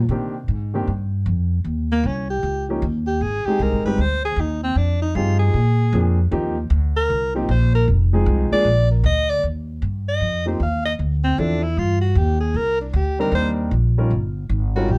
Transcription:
0.09 upright bass C3, grand piano D#3 A#3 C4 D4 G4
0.48 upright bass G#2
0.74 grand piano D#3 A#3 C4 D4 G4
0.87 upright bass G2
1.26 upright bass F2
1.64 upright bass D#2
1.92 alto saxophone A#3
2.04 upright bass C2, alto saxophone C#4
2.30 alto saxophone G4
2.43 upright bass C#2
2.69 grand piano F3 A#3 C#4 D#4 G4
2.82 upright bass D#2
3.07 alto saxophone G4
3.21 upright bass G#1, alto saxophone G#4
3.46 grand piano G#3 C4 D#4 G4 G#4, alto saxophone G4, muted upright bass stroke
3.59 upright bass C2, alto saxophone A#4
3.72 upright bass G#1
3.85 upright bass G1, grand piano G3 G#3 C4 D#4 G4, alto saxophone B4
3.98 upright bass D2, alto saxophone C5
4.25 alto saxophone G#4
4.36 upright bass D#2, alto saxophone D#4
4.63 alto saxophone C4
4.75 upright bass F2, alto saxophone D4
5.01 alto saxophone D#4
5.15 upright bass G2, grand piano F3 C4 D#4 G4 G#4, alto saxophone F4
5.39 alto saxophone G#4
5.54 upright bass A#2
5.92 upright bass F2, grand piano F3 A#3 C4 D4 G#4
6.31 upright bass D#2, grand piano F3 A#3 C4 D#4 G4
6.70 upright bass D2
6.96 alto saxophone A#4
7.10 upright bass C2
7.35 grand piano F3 A#3 C4 D#4 G4, alto saxophone G4
7.49 upright bass A#1, alto saxophone C5
7.75 alto saxophone A#4
7.88 upright bass F1
8.13 grand piano F3 G#3 C4 D#4 G#4
8.26 upright bass C2
8.51 grand piano F3 G#3 A#3 D4 G#4, alto saxophone D5, muted upright bass stroke
8.64 upright bass A#1
8.91 alto saxophone A#4
9.04 upright bass D2, alto saxophone D#5
9.30 alto saxophone D5
9.43 upright bass D#2
9.82 upright bass G2
10.08 alto saxophone D#5
10.20 upright bass F2
10.46 grand piano F3 A#3 C4 D#4 G4, alto saxophone C5
10.60 upright bass D#2, alto saxophone F5
10.85 alto saxophone D#5
10.99 upright bass D2
11.24 alto saxophone C4
11.38 upright bass E2, grand piano F3 C4 D4 E4 A4, alto saxophone D4
11.63 alto saxophone E4
11.77 upright bass G2, alto saxophone F4
12.01 alto saxophone F#4
12.15 upright bass D#2, alto saxophone G4
12.40 alto saxophone G#4
12.54 upright bass C2, alto saxophone A#4
12.81 alto saxophone D4
12.93 upright bass D2, alto saxophone G4
13.19 grand piano G3 C4 D4 D#4 A#4, alto saxophone A#4
13.32 upright bass D#2, alto saxophone C5
13.71 upright bass A#1
13.98 grand piano G3 C#4 D#4 F4 A#4
14.10 upright bass G1
14.49 upright bass G#1
14.75 grand piano G3 C#4 D#4 F4 A#4, alto saxophone F#4
14.88 upright bass A#1, alto saxophone G4

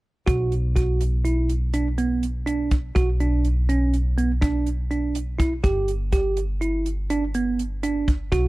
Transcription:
0.27 upright bass B1, tine electric piano F#4, kick, closed hi-hat
0.52 closed hi-hat
0.76 tine electric piano F#4, kick, closed hi-hat
1.01 closed hi-hat
1.25 tine electric piano E4, closed hi-hat
1.49 closed hi-hat
1.74 tine electric piano D4, closed hi-hat
1.98 tine electric piano B3, closed hi-hat
2.23 closed hi-hat
2.46 tine electric piano D4, closed hi-hat
2.71 kick, closed hi-hat
2.95 upright bass B1, tine electric piano F#4, kick, closed hi-hat
3.20 tine electric piano D4, closed hi-hat
3.45 closed hi-hat
3.69 tine electric piano C#4, closed hi-hat
3.93 closed hi-hat
4.18 tine electric piano B3, closed hi-hat
4.42 tine electric piano D4, kick, closed hi-hat
4.66 closed hi-hat
4.91 tine electric piano D4, closed hi-hat
5.15 closed hi-hat
5.39 tine electric piano E4, kick, closed hi-hat
5.64 upright bass G1, tine electric piano G4, kick, closed hi-hat
5.88 closed hi-hat
6.12 tine electric piano G4, kick, closed hi-hat
6.37 closed hi-hat
6.61 tine electric piano E4, closed hi-hat
6.86 closed hi-hat
7.10 tine electric piano D4, closed hi-hat
7.34 tine electric piano B3, closed hi-hat
7.59 closed hi-hat
7.83 tine electric piano D4, closed hi-hat
8.08 kick, closed hi-hat
8.32 upright bass B1, tine electric piano F#4, kick, closed hi-hat

